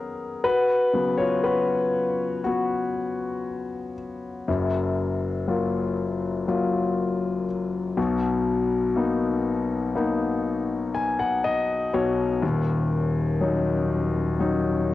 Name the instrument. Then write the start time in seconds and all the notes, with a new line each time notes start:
grand piano
Already playing: C#4 A#4
0.44 F#4 B4
0.93 C#3 F#3 B3
1.17 F4 C#5
1.44 F#4 B4
2.44 B3 F#4
4.48 F#1 F#2
5.48 F#3 A#3 F4
6.48 F#3 A#3 F4
7.97 B1 B2
8.96 A#3 B3 D#4
9.95 A#3 B3 D#4
10.94 G#5
11.19 F#5
11.44 D#5
11.94 B1 B2 C#5
12.42 D#1 D#2
13.41 F#3 C#4 D#4
14.40 F#3 C#4 D#4